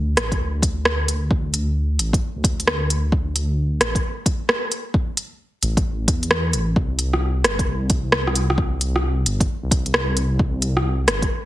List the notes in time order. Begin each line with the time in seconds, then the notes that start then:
Already playing: D2
0.17 A1, cross-stick, closed hi-hat
0.32 kick, closed hi-hat
0.40 D2
0.62 kick, closed hi-hat
0.85 cross-stick
1.08 closed hi-hat
1.31 kick
1.54 closed hi-hat
1.99 A1, closed hi-hat
2.13 kick, closed hi-hat
2.36 D2
2.44 kick, closed hi-hat
2.59 D2, closed hi-hat
2.67 cross-stick
2.90 closed hi-hat
3.12 kick
3.36 closed hi-hat
3.80 A1, cross-stick, closed hi-hat
3.95 kick, closed hi-hat
4.26 kick, closed hi-hat
4.49 cross-stick
4.72 closed hi-hat
4.94 kick
5.17 closed hi-hat
5.63 A1, closed hi-hat
5.77 kick, closed hi-hat
6.08 E2, kick, closed hi-hat
6.23 closed hi-hat
6.31 cross-stick
6.53 A1, closed hi-hat
6.76 C2, kick
6.99 closed hi-hat
7.13 cross-stick
7.44 G1, cross-stick, closed hi-hat
7.59 kick, closed hi-hat
7.67 C2
7.90 kick, closed hi-hat
8.12 cross-stick
8.27 cross-stick
8.35 closed hi-hat
8.50 cross-stick
8.58 kick
8.81 closed hi-hat
8.96 cross-stick
9.26 G1, closed hi-hat
9.40 kick, closed hi-hat
9.63 C2
9.71 kick, closed hi-hat
9.86 C2, closed hi-hat
9.94 cross-stick
10.17 closed hi-hat
10.39 kick
10.62 closed hi-hat
10.77 cross-stick
11.08 G1, cross-stick, closed hi-hat
11.22 kick, closed hi-hat